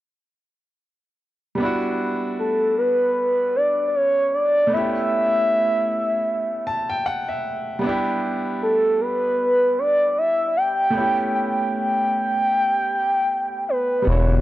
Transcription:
1.55 grand piano G3 B3
1.60 grand piano D4 E4
1.65 grand piano F#4
2.39 soft synth lead A4
2.78 soft synth lead B4
3.56 soft synth lead D5
3.95 soft synth lead C#5
4.34 soft synth lead D5
4.67 grand piano A3 B3
4.72 grand piano C#4 E4, soft synth lead E5
4.77 grand piano G4
6.67 grand piano A5
6.90 grand piano G5
7.06 grand piano F#5
7.29 grand piano E5
7.79 grand piano G3 B3
7.84 grand piano D4 E4
7.89 grand piano G4
8.62 soft synth lead A4
9.01 soft synth lead B4
9.79 soft synth lead D5
10.18 soft synth lead E5
10.57 soft synth lead G5
10.90 grand piano A3 B3
10.95 grand piano C#4 E4
11.00 grand piano G4
11.35 soft synth lead G5
13.69 soft synth lead B4
14.02 grand piano G3 B3
14.07 analog synth bass E1, ambient pad D3 G3 B3 E4, grand piano D4 E4, soft synth lead C#5
14.12 grand piano F#4

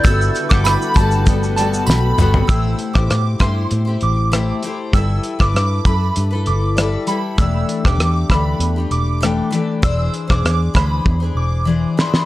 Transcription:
Already playing: glockenspiel G6
0.03 fingered electric bass G1, ambient pad B2 A3 F#4, steel-string acoustic guitar G3 B3 F#4, synth bell E6, kick, closed hi-hat, tambourine, shaker
0.08 steel-string acoustic guitar A4
0.21 shaker
0.35 closed hi-hat, tambourine, shaker
0.49 fingered electric bass G1, steel-string acoustic guitar G3 B3 F#4 A4, synth bell D6, kick, cross-stick, shaker
0.64 synth bell B5, cross-stick, closed hi-hat, tambourine, shaker
0.82 shaker
0.94 fingered electric bass G1, steel-string acoustic guitar G3 B3, synth bell A5, kick, closed hi-hat, tambourine, shaker
0.99 steel-string acoustic guitar F#4 A4
1.11 shaker
1.25 steel-string acoustic guitar G3 B3 F#4 A4, kick, closed hi-hat, shaker
1.43 shaker
1.56 steel-string acoustic guitar G3 B3 F#4 A4, synth bell A5, closed hi-hat, tambourine, shaker
1.74 shaker
1.86 fingered electric bass B1, synth bell B5, snare, tambourine
2.18 fingered electric bass G1, steel-string acoustic guitar G3 B3 F#4 A4, mid tom, tambourine
2.34 floor tom
2.47 fingered electric bass A1, steel-string acoustic guitar A3 E4 G4 C5, synth bell E6, kick, closed hi-hat
2.79 closed hi-hat
2.93 fingered electric bass A1, steel-string acoustic guitar E4 G4 C5, synth bell D6, kick, cross-stick
3.10 fingered electric bass A2, cross-stick, closed hi-hat
3.39 fingered electric bass G2, steel-string acoustic guitar A3 E4 G4 C5, synth bell C6, kick, cross-stick, closed hi-hat
3.71 fingered electric bass A2, closed hi-hat
3.85 steel-string acoustic guitar E4 G4 C5
4.01 fingered electric bass A1, synth bell D6, closed hi-hat
4.32 steel-string acoustic guitar A3 E4 G4, cross-stick, closed hi-hat
4.36 steel-string acoustic guitar C5
4.63 steel-string acoustic guitar A3 E4 G4, closed hi-hat
4.67 steel-string acoustic guitar C5
4.93 fingered electric bass G1, steel-string acoustic guitar G3 E4 A4 B4, synth bell E6, kick, closed hi-hat
5.23 closed hi-hat
5.39 fingered electric bass G1, steel-string acoustic guitar E4 A4 B4, synth bell D6, kick, cross-stick
5.54 fingered electric bass G2, cross-stick, closed hi-hat
5.85 fingered electric bass F#2, steel-string acoustic guitar E4 A4 B4, synth bell B5, kick, closed hi-hat
6.16 fingered electric bass G2, closed hi-hat
6.31 steel-string acoustic guitar A4 B4
6.35 steel-string acoustic guitar E4
6.46 fingered electric bass G1, synth bell D6, closed hi-hat
6.77 steel-string acoustic guitar G3 E4 A4 B4, cross-stick, closed hi-hat
7.07 steel-string acoustic guitar G3 E4 A4 B4, synth bell B5, closed hi-hat
7.38 fingered electric bass E1, steel-string acoustic guitar E3 A3 D4 G4, synth bell E6, kick, closed hi-hat
7.69 closed hi-hat
7.84 fingered electric bass E1, steel-string acoustic guitar A3 D4 G4, synth bell D6, kick, cross-stick
7.98 fingered electric bass E2, cross-stick, closed hi-hat
8.30 fingered electric bass D2, steel-string acoustic guitar E3 A3 D4, synth bell B5, kick, cross-stick, closed hi-hat
8.35 steel-string acoustic guitar G4
8.60 fingered electric bass E2, closed hi-hat
8.76 steel-string acoustic guitar A3 D4 G4
8.91 fingered electric bass E1, synth bell D6, closed hi-hat
9.21 steel-string acoustic guitar E3 A3 D4 G4, cross-stick, closed hi-hat
9.51 steel-string acoustic guitar E3 A3 D4, closed hi-hat
9.55 steel-string acoustic guitar G4
9.82 fingered electric bass E1, steel-string acoustic guitar E3 D4 G#4 C5, synth bell E6, kick, closed hi-hat
10.14 closed hi-hat
10.28 fingered electric bass E1, steel-string acoustic guitar D4 G#4 C5, synth bell D6, kick, cross-stick
10.44 fingered electric bass E2, cross-stick, closed hi-hat
10.74 fingered electric bass D2, steel-string acoustic guitar E3 D4 G#4 C5, synth bell B5, kick, cross-stick, closed hi-hat
11.06 fingered electric bass E2, kick
11.20 steel-string acoustic guitar D4 G#4 C5
11.35 fingered electric bass E1, synth bell D6
11.65 steel-string acoustic guitar E3 D4 G#4 C5
11.97 steel-string acoustic guitar E3 D4 G#4 C5, synth bell B5, glockenspiel C6, snare
12.14 snare

